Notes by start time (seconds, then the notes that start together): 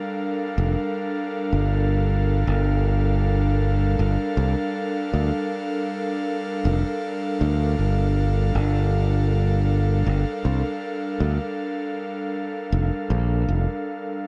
Already playing: G3 D4 A4 A#4 F5
0.58 F1
1.53 G1
2.47 G1
3.99 G1
4.37 C2
5.14 D2
6.65 F1
7.41 D2
7.79 G1
8.55 G1
10.07 G1
10.45 C2
11.20 D2
12.72 F1
13.10 A#1
13.48 F1